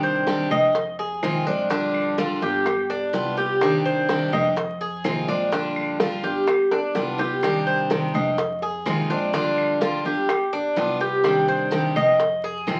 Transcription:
Already playing: upright bass C2, steel-string acoustic guitar C3 D#3 G3 D4 G4
0.03 cuban tres C5, high conga
0.27 steel-string acoustic guitar C3 D#3 G3 D4 G4, high bongo, high conga
0.50 upright bass F2, steel-string acoustic guitar G3 D4 G4, cuban tres D#5, high bongo, low conga, claves
0.75 muted steel-string acoustic guitar stroke, high bongo, high conga
0.99 cuban tres G#4, high bongo, high conga
1.22 upright bass A#1, steel-string acoustic guitar C3 D#3 G#3 C4 F4, high bongo, low bongo, high conga, claves
1.46 steel-string acoustic guitar G#3 C4 F4, cuban tres D4, high bongo, high conga
1.70 steel-string acoustic guitar D3 G3 D4 F4, cuban tres D4, high bongo, high conga
1.94 high conga, claves
2.18 steel-string acoustic guitar D3 G3 D4 F4, cuban tres F4, high bongo, high conga
2.41 upright bass G1, steel-string acoustic guitar G3 D4 F4, cuban tres G4, high bongo
2.66 muted steel-string acoustic guitar stroke, high bongo, high conga, claves
2.90 cuban tres D4, high bongo, high conga
3.13 upright bass C2, steel-string acoustic guitar G3 B3 F4, high bongo, low bongo, high conga
3.37 steel-string acoustic guitar B3 F4, cuban tres G4, high bongo
3.61 steel-string acoustic guitar C3 D#3 G3 D4 G4, high bongo, high conga, claves
3.85 cuban tres C5, high conga
4.09 steel-string acoustic guitar C3 D#3 G3 D4 G4, high bongo, high conga
4.32 upright bass F2, steel-string acoustic guitar G3 D4 G4, cuban tres D#5, high bongo, low conga, claves
4.56 muted steel-string acoustic guitar stroke, high bongo, high conga
4.81 cuban tres G#4, high bongo, high conga
5.04 upright bass A#1, steel-string acoustic guitar C3 D#3 G#3 C4 F4, high bongo, low bongo, high conga, claves
5.28 steel-string acoustic guitar G#3 C4 F4, cuban tres D4, high bongo, high conga
5.52 steel-string acoustic guitar D3 G3 D4 F4, cuban tres D4, high bongo, high conga
5.76 high conga, claves
6.00 steel-string acoustic guitar D3 G3 D4 F4, cuban tres F4, high bongo, high conga
6.23 upright bass G1, steel-string acoustic guitar G3 D4 F4, cuban tres G4, high bongo
6.47 muted steel-string acoustic guitar stroke, high bongo, high conga, claves
6.71 cuban tres D4, high bongo, high conga
6.94 upright bass C2, steel-string acoustic guitar G3 B3 F4, high bongo, high conga
7.18 steel-string acoustic guitar B3 F4, cuban tres G4, low bongo, high conga
7.43 steel-string acoustic guitar C3 D#3 G3 D4 G4, high bongo, high conga, claves
7.67 cuban tres C5, high conga
7.90 steel-string acoustic guitar C3 D#3 G3 D4 G4, high bongo, high conga
8.14 upright bass F2, steel-string acoustic guitar G3 D4 G4, cuban tres D#5, high bongo, low conga, claves
8.38 muted steel-string acoustic guitar stroke, high bongo, high conga
8.62 cuban tres G#4, high bongo, high conga
8.86 upright bass A#1, steel-string acoustic guitar C3 D#3 G#3 C4 F4, high bongo, low bongo, high conga, claves
9.10 steel-string acoustic guitar G#3 C4 F4, cuban tres D4, high bongo, high conga
9.33 steel-string acoustic guitar D3 G3 D4 F4, cuban tres D4, high bongo, high conga
9.58 high conga, claves
9.81 steel-string acoustic guitar D3 G3 D4 F4, cuban tres F4, high bongo, high conga
10.05 upright bass G1, steel-string acoustic guitar G3 D4 F4, cuban tres G4, high bongo, high conga
10.29 muted steel-string acoustic guitar stroke, high bongo, high conga, claves
10.53 cuban tres D4, high bongo, high conga
10.76 upright bass C2, steel-string acoustic guitar G3 B3 F4, high bongo, low bongo, high conga
11.00 steel-string acoustic guitar B3 F4, cuban tres G4, high bongo
11.24 steel-string acoustic guitar C3 D#3 G3 D4 G4, high bongo, high conga, claves
11.48 cuban tres C5, high conga
11.71 steel-string acoustic guitar C3 D#3 G3 D4 G4, high bongo, high conga
11.96 upright bass F2, steel-string acoustic guitar G3 D4 G4, cuban tres D#5, high bongo, low conga, claves
12.19 muted steel-string acoustic guitar stroke, high bongo, high conga
12.44 cuban tres G#4, high bongo, high conga
12.67 upright bass A#1, steel-string acoustic guitar C3 D#3 G#3 C4 F4, high bongo, low bongo, high conga, claves

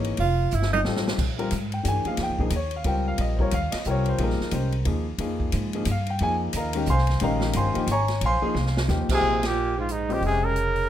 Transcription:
Already playing: upright bass G#1, grand piano E3 A#3 D#4 G#4 C#5
0.04 ride
0.17 upright bass F1, tenor saxophone F4, ride
0.51 upright bass G1, tenor saxophone E4, hi-hat pedal
0.62 snare
0.73 tenor saxophone D#4, high tom
0.84 upright bass A1, grand piano G3 C4 D#4 F4 A4, snare
0.96 snare
1.08 snare
1.19 upright bass A#1, kick, crash
1.38 grand piano G3 C4 F4 A#4, ride
1.51 upright bass G#2, hi-hat pedal, ride
1.72 grand piano G5, ride
1.83 upright bass G2, grand piano E3 A3 D4 G4, hi-hat pedal, ride
1.88 grand piano G#5
2.05 grand piano F3 A#3 D#4 G#4 F5, muted upright bass stroke, ride
2.17 upright bass F2, snare, ride
2.23 grand piano G5
2.29 upright bass C#2
2.39 upright bass A#1, grand piano F3 A#3 D#4 G#4 A#4, kick
2.50 upright bass D#2, hi-hat pedal, ride
2.56 grand piano C#5
2.71 ride
2.76 grand piano F5
2.84 upright bass C#2, grand piano G3 C4 F4 A#4 G5, ride
3.08 grand piano F5
3.18 upright bass A#1, grand piano D#5, ride
3.36 grand piano G3 C4 F4 C5, kick
3.40 grand piano A#4 C#5
3.51 upright bass D#2, grand piano F5, hi-hat pedal, ride
3.72 grand piano D#5, muted upright bass stroke, snare, ride
3.84 upright bass C2, grand piano G3 C4 F4 A#4, hi-hat pedal
3.90 grand piano C#5
4.06 grand piano C5, ride
4.18 upright bass A#1, grand piano F3 A#3 D#4 G#4, ride
4.23 grand piano A#4
4.30 snare
4.39 muted upright bass stroke, snare
4.51 upright bass C2, grand piano G#3 C#4 G4 C5, hi-hat pedal, ride
4.72 ride
4.85 upright bass D#2, grand piano F3 A#3 D#4 G#4, ride
5.18 upright bass F2, grand piano F3 A#3 D#4 G#4, ride
5.40 kick
5.52 upright bass G#2, hi-hat pedal, ride
5.73 grand piano F3 A#3 D#4 G#4, ride
5.85 upright bass G2, hi-hat pedal, ride
5.91 grand piano F5
6.06 grand piano G5, ride
6.19 upright bass F2, grand piano F3 A#3 D#4 G#4, ride
6.23 grand piano G#5
6.53 upright bass D#2, grand piano A#5, hi-hat pedal, ride
6.57 grand piano A#4 D#5 F5
6.73 grand piano D#3 G#3 C#4 G4, ride
6.86 upright bass C2, grand piano C6, hi-hat pedal
6.90 grand piano C5 F5 G#5
6.98 snare
7.07 snare, ride
7.20 upright bass A#1, grand piano D#3 G#3 C#4 G4 F5 A#5, ride
7.24 grand piano A#4 D#5
7.41 snare
7.53 upright bass G1, grand piano C5 F5 C6, hi-hat pedal, ride
7.58 grand piano G#5
7.74 grand piano F3 A#3 D#4 G4, muted upright bass stroke, ride
7.87 upright bass G#1, hi-hat pedal, ride
7.91 grand piano C#5 G#5 A#5 C#6
8.08 snare, ride
8.21 upright bass A#1, ride
8.25 grand piano C5 F5 G#5 C6
8.42 grand piano F3 A#3 D#4 G#4, muted upright bass stroke
8.54 upright bass C2, snare
8.66 snare
8.77 snare
8.88 upright bass D#2, grand piano F3 A#3 D#4 G4, snare, hi-hat pedal
9.09 tenor saxophone C3, muted upright bass stroke, kick, crash
9.14 trumpet G#4
9.21 upright bass A#1, grand piano F3 A#3 D#4 G#4 C5
9.43 tenor saxophone A#2, trumpet G4, snare, ride
9.77 tenor saxophone G#2, trumpet F4
9.89 tenor saxophone G#2, trumpet D#4, closed hi-hat
10.09 tenor saxophone A#2, grand piano G#3 C#4 G4 C5 D#5, open hi-hat
10.13 trumpet G4
10.21 upright bass F1, tenor saxophone C3, open hi-hat
10.26 trumpet G#4
10.45 tenor saxophone C#3, trumpet A#4
10.56 closed hi-hat
10.76 open hi-hat

